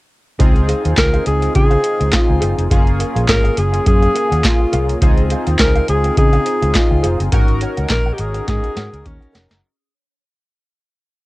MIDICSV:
0, 0, Header, 1, 7, 480
1, 0, Start_track
1, 0, Key_signature, -5, "major"
1, 0, Tempo, 576923
1, 335, Time_signature, 4, 2, 24, 8
1, 9361, End_track
2, 0, Start_track
2, 0, Title_t, "Clean electric guitar"
2, 0, Program_c, 0, 27
2, 326, Note_on_c, 0, 68, 82
2, 331, Note_on_c, 0, 72, 89
2, 338, Note_on_c, 0, 77, 84
2, 449, Note_off_c, 0, 77, 0
2, 458, Note_off_c, 0, 72, 0
2, 509, Note_off_c, 0, 68, 0
2, 565, Note_on_c, 0, 68, 60
2, 572, Note_on_c, 0, 72, 72
2, 576, Note_on_c, 0, 77, 73
2, 691, Note_off_c, 0, 77, 0
2, 696, Note_off_c, 0, 72, 0
2, 701, Note_on_c, 0, 77, 58
2, 702, Note_off_c, 0, 68, 0
2, 706, Note_on_c, 0, 72, 57
2, 712, Note_on_c, 0, 68, 53
2, 799, Note_off_c, 0, 68, 0
2, 802, Note_off_c, 0, 72, 0
2, 804, Note_off_c, 0, 77, 0
2, 946, Note_on_c, 0, 77, 79
2, 951, Note_on_c, 0, 72, 74
2, 956, Note_on_c, 0, 68, 68
2, 1038, Note_off_c, 0, 68, 0
2, 1043, Note_off_c, 0, 72, 0
2, 1046, Note_off_c, 0, 77, 0
2, 1419, Note_on_c, 0, 77, 78
2, 1425, Note_on_c, 0, 72, 74
2, 1430, Note_on_c, 0, 68, 67
2, 1515, Note_off_c, 0, 68, 0
2, 1518, Note_off_c, 0, 72, 0
2, 1522, Note_off_c, 0, 77, 0
2, 2003, Note_on_c, 0, 68, 87
2, 2010, Note_on_c, 0, 72, 92
2, 2015, Note_on_c, 0, 77, 102
2, 2134, Note_off_c, 0, 77, 0
2, 2141, Note_off_c, 0, 72, 0
2, 2188, Note_off_c, 0, 68, 0
2, 2249, Note_on_c, 0, 68, 74
2, 2253, Note_on_c, 0, 70, 85
2, 2259, Note_on_c, 0, 77, 94
2, 2372, Note_off_c, 0, 77, 0
2, 2379, Note_off_c, 0, 70, 0
2, 2431, Note_off_c, 0, 68, 0
2, 2487, Note_on_c, 0, 68, 57
2, 2493, Note_on_c, 0, 70, 57
2, 2499, Note_on_c, 0, 77, 61
2, 2615, Note_off_c, 0, 77, 0
2, 2619, Note_off_c, 0, 70, 0
2, 2624, Note_off_c, 0, 68, 0
2, 2625, Note_on_c, 0, 77, 62
2, 2629, Note_on_c, 0, 70, 56
2, 2634, Note_on_c, 0, 68, 50
2, 2719, Note_off_c, 0, 68, 0
2, 2722, Note_off_c, 0, 70, 0
2, 2725, Note_off_c, 0, 77, 0
2, 2862, Note_on_c, 0, 77, 75
2, 2867, Note_on_c, 0, 70, 70
2, 2872, Note_on_c, 0, 68, 60
2, 2958, Note_off_c, 0, 68, 0
2, 2963, Note_off_c, 0, 70, 0
2, 2965, Note_off_c, 0, 77, 0
2, 3451, Note_on_c, 0, 68, 82
2, 3455, Note_on_c, 0, 70, 79
2, 3462, Note_on_c, 0, 77, 84
2, 3583, Note_off_c, 0, 70, 0
2, 3583, Note_off_c, 0, 77, 0
2, 3586, Note_off_c, 0, 68, 0
2, 3587, Note_on_c, 0, 78, 63
2, 3593, Note_on_c, 0, 70, 49
2, 3596, Note_on_c, 0, 68, 53
2, 3685, Note_off_c, 0, 68, 0
2, 3689, Note_off_c, 0, 70, 0
2, 3699, Note_off_c, 0, 78, 0
2, 3930, Note_on_c, 0, 68, 75
2, 3936, Note_on_c, 0, 70, 92
2, 3940, Note_on_c, 0, 77, 93
2, 4059, Note_off_c, 0, 77, 0
2, 4067, Note_off_c, 0, 70, 0
2, 4111, Note_off_c, 0, 68, 0
2, 4173, Note_on_c, 0, 68, 78
2, 4181, Note_on_c, 0, 72, 84
2, 4185, Note_on_c, 0, 77, 89
2, 4300, Note_off_c, 0, 77, 0
2, 4307, Note_off_c, 0, 72, 0
2, 4353, Note_off_c, 0, 68, 0
2, 4416, Note_on_c, 0, 68, 59
2, 4421, Note_on_c, 0, 72, 64
2, 4426, Note_on_c, 0, 77, 61
2, 4541, Note_off_c, 0, 77, 0
2, 4546, Note_off_c, 0, 72, 0
2, 4551, Note_on_c, 0, 77, 68
2, 4552, Note_off_c, 0, 68, 0
2, 4556, Note_on_c, 0, 72, 57
2, 4562, Note_on_c, 0, 68, 59
2, 4647, Note_off_c, 0, 68, 0
2, 4652, Note_off_c, 0, 72, 0
2, 4655, Note_off_c, 0, 77, 0
2, 4788, Note_on_c, 0, 77, 89
2, 4794, Note_on_c, 0, 72, 74
2, 4800, Note_on_c, 0, 68, 79
2, 4886, Note_off_c, 0, 68, 0
2, 4888, Note_off_c, 0, 72, 0
2, 4892, Note_off_c, 0, 77, 0
2, 5267, Note_on_c, 0, 77, 85
2, 5272, Note_on_c, 0, 72, 65
2, 5276, Note_on_c, 0, 68, 71
2, 5366, Note_off_c, 0, 68, 0
2, 5370, Note_off_c, 0, 72, 0
2, 5373, Note_off_c, 0, 77, 0
2, 5850, Note_on_c, 0, 68, 86
2, 5856, Note_on_c, 0, 72, 82
2, 5860, Note_on_c, 0, 77, 84
2, 5978, Note_off_c, 0, 77, 0
2, 5986, Note_off_c, 0, 72, 0
2, 6031, Note_off_c, 0, 68, 0
2, 6091, Note_on_c, 0, 70, 86
2, 6099, Note_on_c, 0, 73, 101
2, 6103, Note_on_c, 0, 78, 95
2, 6217, Note_off_c, 0, 78, 0
2, 6224, Note_off_c, 0, 73, 0
2, 6272, Note_off_c, 0, 70, 0
2, 6335, Note_on_c, 0, 70, 67
2, 6340, Note_on_c, 0, 73, 65
2, 6345, Note_on_c, 0, 78, 61
2, 6456, Note_off_c, 0, 78, 0
2, 6461, Note_off_c, 0, 73, 0
2, 6466, Note_on_c, 0, 78, 64
2, 6467, Note_off_c, 0, 70, 0
2, 6471, Note_on_c, 0, 73, 48
2, 6477, Note_on_c, 0, 70, 48
2, 6564, Note_off_c, 0, 70, 0
2, 6567, Note_off_c, 0, 73, 0
2, 6571, Note_off_c, 0, 78, 0
2, 6706, Note_on_c, 0, 78, 86
2, 6711, Note_on_c, 0, 73, 73
2, 6716, Note_on_c, 0, 70, 64
2, 6801, Note_off_c, 0, 70, 0
2, 6806, Note_off_c, 0, 73, 0
2, 6811, Note_off_c, 0, 78, 0
2, 7286, Note_on_c, 0, 70, 77
2, 7291, Note_on_c, 0, 73, 87
2, 7295, Note_on_c, 0, 78, 96
2, 7416, Note_off_c, 0, 73, 0
2, 7417, Note_off_c, 0, 78, 0
2, 7420, Note_off_c, 0, 70, 0
2, 7420, Note_on_c, 0, 80, 60
2, 7426, Note_on_c, 0, 73, 53
2, 7430, Note_on_c, 0, 70, 50
2, 7516, Note_off_c, 0, 70, 0
2, 7519, Note_off_c, 0, 73, 0
2, 7528, Note_off_c, 0, 80, 0
2, 7764, Note_on_c, 0, 70, 82
2, 7770, Note_on_c, 0, 73, 91
2, 7775, Note_on_c, 0, 78, 91
2, 7891, Note_off_c, 0, 78, 0
2, 7897, Note_off_c, 0, 73, 0
2, 7948, Note_off_c, 0, 70, 0
2, 9361, End_track
3, 0, Start_track
3, 0, Title_t, "Alto saxophone"
3, 0, Program_c, 1, 65
3, 819, Note_on_c, 1, 70, 105
3, 1040, Note_off_c, 1, 70, 0
3, 1062, Note_on_c, 1, 68, 91
3, 1282, Note_off_c, 1, 68, 0
3, 1295, Note_on_c, 1, 68, 110
3, 1781, Note_on_c, 1, 65, 90
3, 1793, Note_off_c, 1, 68, 0
3, 2152, Note_off_c, 1, 65, 0
3, 2739, Note_on_c, 1, 70, 108
3, 2982, Note_on_c, 1, 68, 95
3, 2994, Note_off_c, 1, 70, 0
3, 3219, Note_off_c, 1, 68, 0
3, 3226, Note_on_c, 1, 68, 113
3, 3712, Note_on_c, 1, 65, 92
3, 3725, Note_off_c, 1, 68, 0
3, 4078, Note_off_c, 1, 65, 0
3, 4665, Note_on_c, 1, 70, 107
3, 4884, Note_off_c, 1, 70, 0
3, 4905, Note_on_c, 1, 68, 101
3, 5124, Note_off_c, 1, 68, 0
3, 5145, Note_on_c, 1, 68, 104
3, 5629, Note_on_c, 1, 65, 85
3, 5641, Note_off_c, 1, 68, 0
3, 5996, Note_off_c, 1, 65, 0
3, 6589, Note_on_c, 1, 70, 110
3, 6768, Note_on_c, 1, 67, 71
3, 6781, Note_off_c, 1, 70, 0
3, 6826, Note_on_c, 1, 68, 100
3, 6838, Note_off_c, 1, 67, 0
3, 7061, Note_off_c, 1, 68, 0
3, 7068, Note_on_c, 1, 68, 104
3, 7544, Note_on_c, 1, 61, 87
3, 7556, Note_off_c, 1, 68, 0
3, 7914, Note_off_c, 1, 61, 0
3, 9361, End_track
4, 0, Start_track
4, 0, Title_t, "Analog polysynth"
4, 0, Program_c, 2, 90
4, 324, Note_on_c, 2, 60, 87
4, 328, Note_on_c, 2, 63, 73
4, 334, Note_on_c, 2, 65, 76
4, 337, Note_on_c, 2, 68, 85
4, 2216, Note_off_c, 2, 60, 0
4, 2218, Note_off_c, 2, 63, 0
4, 2221, Note_off_c, 2, 65, 0
4, 2223, Note_off_c, 2, 68, 0
4, 2250, Note_on_c, 2, 56, 67
4, 2255, Note_on_c, 2, 61, 74
4, 2259, Note_on_c, 2, 65, 75
4, 2266, Note_on_c, 2, 68, 89
4, 2303, Note_on_c, 2, 58, 82
4, 2313, Note_off_c, 2, 56, 0
4, 4142, Note_off_c, 2, 61, 0
4, 4144, Note_off_c, 2, 65, 0
4, 4147, Note_off_c, 2, 68, 0
4, 4166, Note_off_c, 2, 58, 0
4, 4168, Note_on_c, 2, 60, 81
4, 4174, Note_on_c, 2, 63, 75
4, 4177, Note_on_c, 2, 65, 74
4, 4182, Note_on_c, 2, 68, 85
4, 6059, Note_off_c, 2, 60, 0
4, 6061, Note_off_c, 2, 63, 0
4, 6063, Note_off_c, 2, 65, 0
4, 6065, Note_off_c, 2, 68, 0
4, 6090, Note_on_c, 2, 61, 81
4, 6095, Note_on_c, 2, 63, 70
4, 6097, Note_on_c, 2, 66, 73
4, 6102, Note_on_c, 2, 70, 93
4, 7979, Note_off_c, 2, 61, 0
4, 7982, Note_off_c, 2, 63, 0
4, 7983, Note_off_c, 2, 66, 0
4, 7986, Note_off_c, 2, 70, 0
4, 9361, End_track
5, 0, Start_track
5, 0, Title_t, "Fingered electric bass"
5, 0, Program_c, 3, 33
5, 334, Note_on_c, 3, 37, 106
5, 596, Note_off_c, 3, 37, 0
5, 710, Note_on_c, 3, 39, 81
5, 784, Note_off_c, 3, 39, 0
5, 812, Note_on_c, 3, 37, 91
5, 980, Note_off_c, 3, 37, 0
5, 1055, Note_on_c, 3, 37, 81
5, 1223, Note_off_c, 3, 37, 0
5, 1294, Note_on_c, 3, 49, 99
5, 1462, Note_off_c, 3, 49, 0
5, 1669, Note_on_c, 3, 37, 90
5, 1743, Note_off_c, 3, 37, 0
5, 1908, Note_on_c, 3, 37, 79
5, 1982, Note_off_c, 3, 37, 0
5, 2015, Note_on_c, 3, 30, 86
5, 2109, Note_off_c, 3, 30, 0
5, 2149, Note_on_c, 3, 29, 88
5, 2223, Note_off_c, 3, 29, 0
5, 2254, Note_on_c, 3, 30, 98
5, 2516, Note_off_c, 3, 30, 0
5, 2628, Note_on_c, 3, 34, 86
5, 2702, Note_off_c, 3, 34, 0
5, 2734, Note_on_c, 3, 32, 86
5, 2902, Note_off_c, 3, 32, 0
5, 2977, Note_on_c, 3, 30, 100
5, 3144, Note_off_c, 3, 30, 0
5, 3217, Note_on_c, 3, 42, 102
5, 3384, Note_off_c, 3, 42, 0
5, 3592, Note_on_c, 3, 39, 96
5, 3665, Note_off_c, 3, 39, 0
5, 3939, Note_on_c, 3, 36, 88
5, 4105, Note_off_c, 3, 36, 0
5, 4175, Note_on_c, 3, 37, 99
5, 4436, Note_off_c, 3, 37, 0
5, 4553, Note_on_c, 3, 39, 89
5, 4626, Note_off_c, 3, 39, 0
5, 4654, Note_on_c, 3, 37, 93
5, 4822, Note_off_c, 3, 37, 0
5, 4899, Note_on_c, 3, 37, 93
5, 5065, Note_off_c, 3, 37, 0
5, 5137, Note_on_c, 3, 49, 103
5, 5304, Note_off_c, 3, 49, 0
5, 5511, Note_on_c, 3, 37, 88
5, 5584, Note_off_c, 3, 37, 0
5, 5750, Note_on_c, 3, 37, 76
5, 5824, Note_off_c, 3, 37, 0
5, 5856, Note_on_c, 3, 29, 92
5, 5950, Note_off_c, 3, 29, 0
5, 5990, Note_on_c, 3, 30, 86
5, 6064, Note_off_c, 3, 30, 0
5, 6095, Note_on_c, 3, 32, 101
5, 6356, Note_off_c, 3, 32, 0
5, 6472, Note_on_c, 3, 37, 92
5, 6545, Note_off_c, 3, 37, 0
5, 6571, Note_on_c, 3, 34, 90
5, 6740, Note_off_c, 3, 34, 0
5, 6815, Note_on_c, 3, 32, 99
5, 6982, Note_off_c, 3, 32, 0
5, 7056, Note_on_c, 3, 44, 106
5, 7150, Note_off_c, 3, 44, 0
5, 7294, Note_on_c, 3, 44, 102
5, 7388, Note_off_c, 3, 44, 0
5, 7430, Note_on_c, 3, 37, 85
5, 7503, Note_off_c, 3, 37, 0
5, 7535, Note_on_c, 3, 39, 89
5, 7629, Note_off_c, 3, 39, 0
5, 7778, Note_on_c, 3, 29, 87
5, 7871, Note_off_c, 3, 29, 0
5, 9361, End_track
6, 0, Start_track
6, 0, Title_t, "Muted clean electric guitar strokes"
6, 459, Note_on_c, 9, 29, 57
6, 542, Note_off_c, 9, 29, 0
6, 1056, Note_on_c, 9, 29, 36
6, 1139, Note_off_c, 9, 29, 0
6, 1183, Note_on_c, 9, 29, 37
6, 1266, Note_off_c, 9, 29, 0
6, 1290, Note_on_c, 9, 29, 37
6, 1373, Note_off_c, 9, 29, 0
6, 1525, Note_on_c, 9, 29, 37
6, 1608, Note_off_c, 9, 29, 0
6, 1660, Note_on_c, 9, 29, 45
6, 1743, Note_off_c, 9, 29, 0
6, 1765, Note_on_c, 9, 29, 39
6, 1848, Note_off_c, 9, 29, 0
6, 1900, Note_on_c, 9, 29, 49
6, 1983, Note_off_c, 9, 29, 0
6, 2144, Note_on_c, 9, 29, 52
6, 2227, Note_off_c, 9, 29, 0
6, 2382, Note_on_c, 9, 29, 57
6, 2465, Note_off_c, 9, 29, 0
6, 2735, Note_on_c, 9, 29, 46
6, 2818, Note_off_c, 9, 29, 0
6, 2967, Note_on_c, 9, 29, 38
6, 3051, Note_off_c, 9, 29, 0
6, 3101, Note_on_c, 9, 29, 47
6, 3184, Note_off_c, 9, 29, 0
6, 3209, Note_on_c, 9, 29, 42
6, 3293, Note_off_c, 9, 29, 0
6, 3348, Note_on_c, 9, 29, 43
6, 3431, Note_off_c, 9, 29, 0
6, 3695, Note_on_c, 9, 29, 36
6, 3778, Note_off_c, 9, 29, 0
6, 3828, Note_on_c, 9, 29, 42
6, 3911, Note_off_c, 9, 29, 0
6, 4069, Note_on_c, 9, 29, 53
6, 4153, Note_off_c, 9, 29, 0
6, 4310, Note_on_c, 9, 29, 47
6, 4394, Note_off_c, 9, 29, 0
6, 4657, Note_on_c, 9, 29, 39
6, 4741, Note_off_c, 9, 29, 0
6, 4896, Note_on_c, 9, 29, 41
6, 4979, Note_off_c, 9, 29, 0
6, 5027, Note_on_c, 9, 29, 51
6, 5110, Note_off_c, 9, 29, 0
6, 5133, Note_on_c, 9, 29, 45
6, 5216, Note_off_c, 9, 29, 0
6, 5376, Note_on_c, 9, 29, 44
6, 5459, Note_off_c, 9, 29, 0
6, 5509, Note_on_c, 9, 29, 46
6, 5592, Note_off_c, 9, 29, 0
6, 5615, Note_on_c, 9, 29, 35
6, 5698, Note_off_c, 9, 29, 0
6, 5749, Note_on_c, 9, 29, 46
6, 5832, Note_off_c, 9, 29, 0
6, 5988, Note_on_c, 9, 29, 46
6, 6071, Note_off_c, 9, 29, 0
6, 6227, Note_on_c, 9, 29, 53
6, 6311, Note_off_c, 9, 29, 0
6, 6811, Note_on_c, 9, 29, 34
6, 6894, Note_off_c, 9, 29, 0
6, 6942, Note_on_c, 9, 29, 47
6, 7025, Note_off_c, 9, 29, 0
6, 7047, Note_on_c, 9, 29, 47
6, 7131, Note_off_c, 9, 29, 0
6, 7183, Note_on_c, 9, 29, 43
6, 7266, Note_off_c, 9, 29, 0
6, 7526, Note_on_c, 9, 29, 47
6, 7610, Note_off_c, 9, 29, 0
6, 7660, Note_on_c, 9, 29, 49
6, 7744, Note_off_c, 9, 29, 0
6, 7901, Note_on_c, 9, 29, 50
6, 7984, Note_off_c, 9, 29, 0
6, 9361, End_track
7, 0, Start_track
7, 0, Title_t, "Drums"
7, 333, Note_on_c, 9, 36, 124
7, 333, Note_on_c, 9, 42, 102
7, 416, Note_off_c, 9, 36, 0
7, 416, Note_off_c, 9, 42, 0
7, 465, Note_on_c, 9, 42, 32
7, 548, Note_off_c, 9, 42, 0
7, 573, Note_on_c, 9, 42, 71
7, 656, Note_off_c, 9, 42, 0
7, 708, Note_on_c, 9, 42, 45
7, 791, Note_off_c, 9, 42, 0
7, 810, Note_on_c, 9, 42, 84
7, 811, Note_on_c, 9, 36, 94
7, 811, Note_on_c, 9, 39, 99
7, 813, Note_on_c, 9, 38, 103
7, 894, Note_off_c, 9, 36, 0
7, 894, Note_off_c, 9, 39, 0
7, 894, Note_off_c, 9, 42, 0
7, 897, Note_off_c, 9, 38, 0
7, 946, Note_on_c, 9, 42, 35
7, 1029, Note_off_c, 9, 42, 0
7, 1048, Note_on_c, 9, 42, 81
7, 1132, Note_off_c, 9, 42, 0
7, 1184, Note_on_c, 9, 42, 46
7, 1267, Note_off_c, 9, 42, 0
7, 1290, Note_on_c, 9, 42, 89
7, 1294, Note_on_c, 9, 36, 114
7, 1373, Note_off_c, 9, 42, 0
7, 1377, Note_off_c, 9, 36, 0
7, 1421, Note_on_c, 9, 42, 36
7, 1504, Note_off_c, 9, 42, 0
7, 1529, Note_on_c, 9, 42, 84
7, 1612, Note_off_c, 9, 42, 0
7, 1669, Note_on_c, 9, 42, 46
7, 1752, Note_off_c, 9, 42, 0
7, 1765, Note_on_c, 9, 42, 81
7, 1770, Note_on_c, 9, 39, 91
7, 1772, Note_on_c, 9, 36, 116
7, 1772, Note_on_c, 9, 38, 110
7, 1848, Note_off_c, 9, 42, 0
7, 1853, Note_off_c, 9, 39, 0
7, 1855, Note_off_c, 9, 36, 0
7, 1855, Note_off_c, 9, 38, 0
7, 2011, Note_on_c, 9, 42, 82
7, 2094, Note_off_c, 9, 42, 0
7, 2150, Note_on_c, 9, 42, 50
7, 2233, Note_off_c, 9, 42, 0
7, 2253, Note_on_c, 9, 36, 113
7, 2255, Note_on_c, 9, 42, 105
7, 2337, Note_off_c, 9, 36, 0
7, 2338, Note_off_c, 9, 42, 0
7, 2387, Note_on_c, 9, 42, 32
7, 2470, Note_off_c, 9, 42, 0
7, 2495, Note_on_c, 9, 42, 77
7, 2579, Note_off_c, 9, 42, 0
7, 2632, Note_on_c, 9, 42, 46
7, 2715, Note_off_c, 9, 42, 0
7, 2733, Note_on_c, 9, 36, 101
7, 2733, Note_on_c, 9, 39, 86
7, 2733, Note_on_c, 9, 42, 87
7, 2736, Note_on_c, 9, 38, 109
7, 2816, Note_off_c, 9, 36, 0
7, 2816, Note_off_c, 9, 42, 0
7, 2817, Note_off_c, 9, 39, 0
7, 2819, Note_off_c, 9, 38, 0
7, 2869, Note_on_c, 9, 42, 35
7, 2952, Note_off_c, 9, 42, 0
7, 2972, Note_on_c, 9, 42, 77
7, 3055, Note_off_c, 9, 42, 0
7, 3108, Note_on_c, 9, 42, 50
7, 3191, Note_off_c, 9, 42, 0
7, 3213, Note_on_c, 9, 42, 84
7, 3216, Note_on_c, 9, 36, 121
7, 3297, Note_off_c, 9, 42, 0
7, 3299, Note_off_c, 9, 36, 0
7, 3348, Note_on_c, 9, 42, 37
7, 3431, Note_off_c, 9, 42, 0
7, 3456, Note_on_c, 9, 42, 78
7, 3540, Note_off_c, 9, 42, 0
7, 3595, Note_on_c, 9, 42, 47
7, 3678, Note_off_c, 9, 42, 0
7, 3693, Note_on_c, 9, 42, 84
7, 3695, Note_on_c, 9, 36, 113
7, 3697, Note_on_c, 9, 39, 86
7, 3700, Note_on_c, 9, 38, 107
7, 3776, Note_off_c, 9, 42, 0
7, 3778, Note_off_c, 9, 36, 0
7, 3781, Note_off_c, 9, 39, 0
7, 3783, Note_off_c, 9, 38, 0
7, 3934, Note_on_c, 9, 42, 84
7, 4018, Note_off_c, 9, 42, 0
7, 4071, Note_on_c, 9, 42, 43
7, 4154, Note_off_c, 9, 42, 0
7, 4174, Note_on_c, 9, 36, 124
7, 4175, Note_on_c, 9, 42, 100
7, 4257, Note_off_c, 9, 36, 0
7, 4258, Note_off_c, 9, 42, 0
7, 4305, Note_on_c, 9, 42, 34
7, 4388, Note_off_c, 9, 42, 0
7, 4412, Note_on_c, 9, 42, 77
7, 4495, Note_off_c, 9, 42, 0
7, 4549, Note_on_c, 9, 42, 52
7, 4632, Note_off_c, 9, 42, 0
7, 4650, Note_on_c, 9, 42, 84
7, 4651, Note_on_c, 9, 39, 102
7, 4653, Note_on_c, 9, 36, 101
7, 4653, Note_on_c, 9, 38, 116
7, 4733, Note_off_c, 9, 42, 0
7, 4734, Note_off_c, 9, 39, 0
7, 4736, Note_off_c, 9, 36, 0
7, 4736, Note_off_c, 9, 38, 0
7, 4788, Note_on_c, 9, 42, 36
7, 4871, Note_off_c, 9, 42, 0
7, 4894, Note_on_c, 9, 42, 72
7, 4977, Note_off_c, 9, 42, 0
7, 5027, Note_on_c, 9, 42, 48
7, 5110, Note_off_c, 9, 42, 0
7, 5136, Note_on_c, 9, 42, 82
7, 5137, Note_on_c, 9, 36, 114
7, 5219, Note_off_c, 9, 42, 0
7, 5220, Note_off_c, 9, 36, 0
7, 5266, Note_on_c, 9, 42, 38
7, 5349, Note_off_c, 9, 42, 0
7, 5374, Note_on_c, 9, 42, 82
7, 5458, Note_off_c, 9, 42, 0
7, 5512, Note_on_c, 9, 42, 46
7, 5595, Note_off_c, 9, 42, 0
7, 5611, Note_on_c, 9, 42, 82
7, 5615, Note_on_c, 9, 36, 113
7, 5615, Note_on_c, 9, 39, 77
7, 5617, Note_on_c, 9, 38, 112
7, 5694, Note_off_c, 9, 42, 0
7, 5698, Note_off_c, 9, 36, 0
7, 5699, Note_off_c, 9, 39, 0
7, 5701, Note_off_c, 9, 38, 0
7, 5855, Note_on_c, 9, 42, 81
7, 5938, Note_off_c, 9, 42, 0
7, 5991, Note_on_c, 9, 42, 47
7, 6074, Note_off_c, 9, 42, 0
7, 6092, Note_on_c, 9, 42, 112
7, 6094, Note_on_c, 9, 36, 122
7, 6175, Note_off_c, 9, 42, 0
7, 6177, Note_off_c, 9, 36, 0
7, 6224, Note_on_c, 9, 42, 30
7, 6307, Note_off_c, 9, 42, 0
7, 6331, Note_on_c, 9, 42, 72
7, 6414, Note_off_c, 9, 42, 0
7, 6467, Note_on_c, 9, 42, 49
7, 6550, Note_off_c, 9, 42, 0
7, 6569, Note_on_c, 9, 42, 86
7, 6570, Note_on_c, 9, 39, 84
7, 6572, Note_on_c, 9, 36, 100
7, 6572, Note_on_c, 9, 38, 111
7, 6652, Note_off_c, 9, 42, 0
7, 6653, Note_off_c, 9, 39, 0
7, 6655, Note_off_c, 9, 36, 0
7, 6655, Note_off_c, 9, 38, 0
7, 6807, Note_on_c, 9, 42, 74
7, 6890, Note_off_c, 9, 42, 0
7, 6942, Note_on_c, 9, 42, 47
7, 7025, Note_off_c, 9, 42, 0
7, 7054, Note_on_c, 9, 42, 93
7, 7055, Note_on_c, 9, 38, 53
7, 7056, Note_on_c, 9, 36, 112
7, 7137, Note_off_c, 9, 42, 0
7, 7138, Note_off_c, 9, 38, 0
7, 7139, Note_off_c, 9, 36, 0
7, 7187, Note_on_c, 9, 42, 38
7, 7270, Note_off_c, 9, 42, 0
7, 7294, Note_on_c, 9, 42, 85
7, 7296, Note_on_c, 9, 38, 77
7, 7377, Note_off_c, 9, 42, 0
7, 7379, Note_off_c, 9, 38, 0
7, 7434, Note_on_c, 9, 42, 46
7, 7517, Note_off_c, 9, 42, 0
7, 7535, Note_on_c, 9, 42, 84
7, 7536, Note_on_c, 9, 36, 107
7, 7618, Note_off_c, 9, 42, 0
7, 7619, Note_off_c, 9, 36, 0
7, 7674, Note_on_c, 9, 42, 35
7, 7757, Note_off_c, 9, 42, 0
7, 7778, Note_on_c, 9, 42, 87
7, 7781, Note_on_c, 9, 38, 102
7, 7861, Note_off_c, 9, 42, 0
7, 7864, Note_off_c, 9, 38, 0
7, 7912, Note_on_c, 9, 38, 89
7, 7912, Note_on_c, 9, 42, 50
7, 7995, Note_off_c, 9, 42, 0
7, 7996, Note_off_c, 9, 38, 0
7, 9361, End_track
0, 0, End_of_file